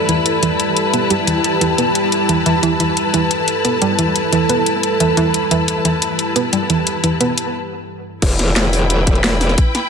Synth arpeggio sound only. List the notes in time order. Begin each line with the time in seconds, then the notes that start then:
0.09 E3
0.43 E3
0.94 B3
1.11 G3
1.27 E3
1.61 E3
1.78 B3
2.29 E3
2.46 E3
2.63 E3
2.80 E3
3.14 E3
3.65 B3
3.82 G3
3.99 E3
4.32 E3
4.49 B3
5.00 E3
5.17 E3
5.51 E3
5.85 E3
6.36 B3
6.53 G3
6.70 E3
7.04 E3
7.21 B3